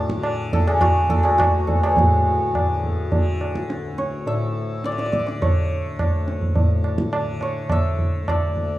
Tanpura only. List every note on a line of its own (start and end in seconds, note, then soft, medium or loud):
0.00 1.27 D2 medium
0.00 1.96 A2 medium
0.00 0.14 D3 medium
0.14 0.70 D3 medium
0.70 2.54 D3 medium
1.28 3.67 D2 medium
1.96 4.25 A2 medium
2.54 3.11 D3 medium
3.11 4.83 D3 medium
3.68 5.96 D2 medium
4.25 6.53 A2 medium
4.83 5.39 D3 medium
5.39 7.10 D3 medium
5.96 8.22 D2 medium
6.54 8.77 A2 medium
7.10 7.65 D3 medium
7.65 8.79 D3 medium
8.22 8.79 D2 medium